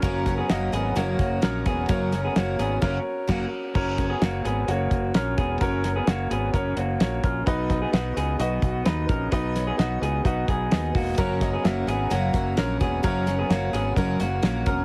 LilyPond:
<<
  \new Staff \with { instrumentName = "Upright piano" } { \time 4/4 \key b \major \tempo 4 = 129 <cis' fis' ais' cis''>8 <cis' fis' ais' cis''>8 <cis' fis' ais' dis''>8 r8 <cis' fis' ais' cis''>8 r8 <cis' fis' ais' cis''>8 r8 | <cis' fis' ais' cis''>8 <cis' fis' ais' cis''>8 <cis' fis' ais' cis''>8 r8 <cis' fis' ais' cis''>8 r8 <cis' fis' ais'>8 r8 | <cis' fis' ais' cis''>8 <cis' fis' ais' cis''>8 <cis' fis' ais' cis''>8 r8 <cis' fis' ais' cis''>8 r8 <cis' fis' ais' cis''>8 r8 | <cis' fis' ais' cis''>8 <cis' fis' ais' cis''>8 <cis' fis' ais' cis''>8 r8 <cis' fis' ais' cis''>8 r8 <cis' fis' ais' cis''>8 r8 |
<dis' fis' b' dis''>8 <dis' fis' b' dis''>8 <dis' fis' b' dis''>8 r8 <dis' fis' b' dis''>8 r8 <dis' fis' b' dis''>8 r8 | <dis' fis' b' dis''>8 <dis' fis' b' cis''>8 <dis' fis' b' dis''>8 r8 <dis' fis' b' dis''>8 r8 <dis' fis' b' dis''>8 r8 | <cis' fis' ais' cis''>8 <cis' fis' ais' dis''>8 <cis' fis' ais' e''>8 r8 <cis' fis' ais' cis''>8 r8 <cis' fis' ais' cis''>8 r8 | <cis' fis' ais' cis''>8 <cis' fis' ais' cis''>8 <cis' fis' ais' cis''>8 r8 <cis' fis' ais' cis''>8 r8 <cis' fis' ais' cis''>8 r8 | }
  \new Staff \with { instrumentName = "Clean electric guitar" } { \time 4/4 \key b \major <cis' ais'>8. <b gis'>16 <ais fis'>8 <b gis'>8 <ais fis'>4 <cis' ais'>8 <b gis'>8 | <cis' ais'>8. <b gis'>16 <ais fis'>8 <b gis'>8 <cis' ais'>8 r8 <ais fis'>8 r8 | <cis' ais'>8. <b gis'>16 <ais fis'>8 <b gis'>8 <ais fis'>4 <cis' ais'>8 <b gis'>8 | <cis' ais'>8. <b gis'>16 <ais fis'>8 <b gis'>8 <cis' ais'>8 <ais fis'>4 <cis' ais'>8 |
<dis' b'>8. <b gis'>16 <b fis'>8 <b gis'>8 <b fis'>4 <dis' b'>8 <cis' ais'>8 | <dis' b'>8. <b gis'>16 <b fis'>8 <b gis'>8 <b fis'>8 <b gis'>4 <ais fis'>8 | <cis' ais'>8. <b gis'>16 <ais fis'>8 <b gis'>8 <ais fis'>4 <cis' ais'>8 <b gis'>8 | <cis' ais'>8. <b gis'>16 <ais fis'>8 <b gis'>8 <cis' ais'>8 <ais fis'>4 <cis' ais'>8 | }
  \new Staff \with { instrumentName = "Twelve-string acoustic guitar" } { \time 4/4 \key b \major <fis, cis fis ais cis' fis'>8 <fis ais cis' fis'>8 <fis ais cis' fis'>8 <fis ais cis' fis'>8 <fis, cis fis ais cis' fis'>8 <fis ais cis' fis'>8 <fis ais cis' fis'>8 <fis ais cis' fis'>8 | <fis, cis fis ais cis' fis'>8 <fis ais cis' fis'>8 <fis ais cis' fis'>8 <fis ais cis' fis'>8 <fis, cis fis ais cis' fis'>8 r8 <fis ais cis' fis'>8 r8 | r1 | r1 |
r1 | r1 | <fis, cis fis ais cis' fis'>8 <fis ais cis' fis'>8 <fis ais cis' fis'>8 <fis ais cis' fis'>8 <fis, cis fis ais cis' fis'>8 <fis ais cis' fis'>8 <fis ais cis' fis'>8 <fis ais cis' fis'>8 | <fis, cis fis ais cis' fis'>8 <fis ais cis' fis'>8 <fis ais cis' fis'>8 <fis ais cis' fis'>8 <fis, cis fis ais cis' fis'>8 <fis ais cis' fis'>8 <fis ais cis' fis'>8 <fis ais cis' fis'>8 | }
  \new Staff \with { instrumentName = "Fingered electric bass" } { \clef bass \time 4/4 \key b \major fis,,4 fis,,8 gis,,8 fis,,8 fis,,8 ais,,8 e,,8 | fis,,4 fis,,8 gis,,8 fis,,8 r8 fis,,8 r8 | fis,,4 fis,,8 gis,,8 fis,,8 fis,,8 ais,,8 e,,8 | fis,,4 fis,,8 gis,,8 fis,,8 fis,,8 ais,,8 ais,,8 |
b,,4 b,,8 cis,8 b,,8 b,,8 dis,8 ais,,8 | b,,4 b,,8 cis,8 b,,8 b,,8 dis,8 e,,8 | fis,,4 fis,,8 gis,,8 fis,,8 fis,,8 ais,,8 e,,8 | fis,,4 fis,,8 gis,,8 fis,,8 fis,,8 ais,,8 e,,8 | }
  \new DrumStaff \with { instrumentName = "Drums" } \drummode { \time 4/4 <hh bd>8 <hh bd sn>8 <hh sn>8 hh8 hh8 <hh bd>8 <hh sn>8 <hh bd>8 | <hh bd>8 <hh sn>8 <hh sn>8 hh8 <cymc bd sn>4 <cymc bd sn>4 | <cymc bd>8 <hh bd sn>8 <hh sn>8 hh8 hh8 <hh bd>8 <hh sn>8 <hh bd>8 | <hh bd>8 <hh sn>8 <hh sn>8 hh8 <hh bd>8 hh8 <hh sn>8 <hh bd>8 |
<hh bd>8 <hh bd sn>8 <hh sn>8 hh8 hh8 <hh bd>8 <hh sn>8 <hh bd>8 | <hh bd>8 <hh sn>8 <hh sn>8 hh8 <hh bd>8 <hh bd>8 <hh sn>8 <hho bd>8 | <hh bd>8 <hh bd sn>8 <hh sn>8 hh8 hh8 <hh bd>8 <hh sn>8 <hh bd>8 | <hh bd>8 <hh sn>8 <hh sn>8 hh8 <hh bd>8 hh8 <hh sn>8 <hh bd>8 | }
>>